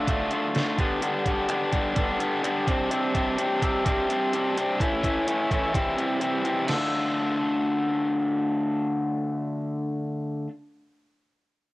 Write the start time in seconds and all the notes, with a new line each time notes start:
0.08 D3 A3 D4 F4, kick, closed hi-hat
0.31 D3 A3 D4 F4, closed hi-hat
0.55 D3 A3 D4 F4, snare, closed hi-hat
0.78 G2 D3 G3 B3 D4, kick, closed hi-hat
1.02 G2 D3 G3 B3 D4, closed hi-hat
1.26 G2 D3 G3 B3 D4, kick, closed hi-hat
1.49 G2 D3 G3 B3 D4, finger snap, closed hi-hat
1.72 G2 D3 G3 B3 D4, kick, closed hi-hat
1.95 G2 D3 G3 B3 D4, kick, closed hi-hat
2.19 G2 D3 G3 B3 D4, closed hi-hat
2.43 G2 D3 G3 B3 D4, finger snap, closed hi-hat
2.67 C3 G3 C4 D4, kick, closed hi-hat
2.90 C3 G3 C4 D4, closed hi-hat
3.14 C3 G3 C4 D4, kick, closed hi-hat
3.38 C3 G3 C4 D4, closed hi-hat
3.62 C3 G3 C4 D4, kick, closed hi-hat
3.84 C3 G3 C4 D4, kick, closed hi-hat
4.09 C3 G3 C4 D4, closed hi-hat
4.33 C3 G3 C4 D4, closed hi-hat
4.57 C3 G3 C4 D4, closed hi-hat
4.80 A2 E3 A3 C#4 E4, kick, closed hi-hat
5.03 A2 E3 A3 C#4 E4, kick, closed hi-hat
5.26 A2 E3 A3 C#4 E4, closed hi-hat
5.51 A2 E3 A3 C#4 E4, kick, closed hi-hat
5.73 C3 E3 G3 C4 E4, kick, closed hi-hat
5.96 C3 E3 G3 C4 E4, closed hi-hat
6.20 C3 E3 G3 C4 E4, closed hi-hat
6.44 C3 E3 G3 C4 E4, closed hi-hat
6.66 D3 A3 D4 F4 A4, snare, crash